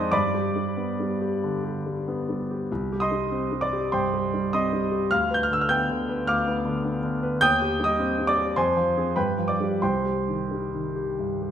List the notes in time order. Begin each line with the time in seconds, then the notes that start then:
Already playing: F2 G#3 C4 D#4 C5 D5 D#5 C6 D6 D#6
0.12 G2 D5 B5 D6
0.34 G4
0.56 G3
0.77 B3
1.00 G3
1.21 G4
1.43 D3
1.64 G4
1.86 G3
2.08 B3
2.29 G3
2.51 G4
2.72 C2
2.92 G4
3.00 D#5 C6 D#6
3.11 G3
3.31 C4
3.52 G3
3.61 D5 D6
3.73 G4
3.92 G2 C5 G5 C6
4.14 G4
4.34 G3
4.53 C4 D#5 C6 D#6
4.73 G3
4.91 G4
5.11 D2 F5 F6
5.30 B4 G6
5.43 F6
5.50 D3 E6
5.61 F6
5.69 B3 G5 G6
5.90 D3
6.09 B4
6.27 D2 F5 D6 F6
6.47 B3
6.65 D3
6.85 B3
7.03 D3
7.23 B4
7.41 D#2 G5 D#6 G6
7.62 G4
7.80 G3
7.84 D#5 D#6
7.99 C4
8.19 G3
8.27 D5 D6
8.38 G4
8.56 F2 C5 G#5 C6
8.77 F3
8.97 C4 G#4
9.16 G2 B4 G5 B5
9.37 F3
9.48 D5 D6
9.60 G3 G4
9.82 C2 C5 G5 C6
10.06 G4
10.28 D#3
10.51 G3
10.73 D#3
10.96 G4
11.19 G2
11.42 G4